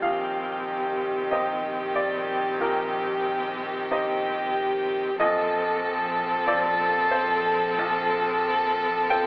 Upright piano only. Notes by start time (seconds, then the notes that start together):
0.02 A#1 F5
1.31 D#4 G4 C5 D#5
1.96 D5
2.60 A#1 A#4
3.91 D#4 G4 C5 D#5
5.20 A#1 D#5
6.47 F4 A4 C5 D5
7.11 C5
7.79 A#1 A5
9.09 F4 A4 C5 G5